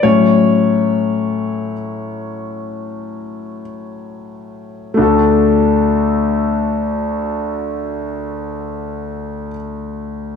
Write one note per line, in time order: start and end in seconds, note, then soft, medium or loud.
0.03 1.73 A2 soft
0.03 1.73 F#3 soft
0.03 1.73 C#4 soft
0.03 3.61 C#5 medium
4.94 9.46 A3 medium
4.94 9.50 D4 soft
4.98 9.51 D2 medium
4.98 9.52 F#4 soft
4.98 9.54 A4 medium